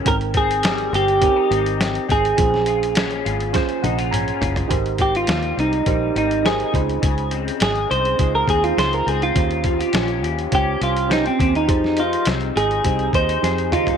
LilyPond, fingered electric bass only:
\new Staff \with { instrumentName = "Fingered electric bass" } { \clef bass \time 4/4 \key bes \dorian \tempo 4 = 103 aes,,4. g,,8. r16 aes,,4 aes,,8 | bes,,4. aes,,8. r16 bes,,4 ges,,8 | \key aes \major aes,,4 ees,8 c,8 bes,,8 aes,,4 des,8 | des,4 aes,,8 c,8 des,8 ees,8 des,8 des,8 |
ees,4 bes,,8 ees,8 des,8 c,4 ees,8 | f,4 c,8 aes,,8 c,8 ees,8 f,8 ees,8 | }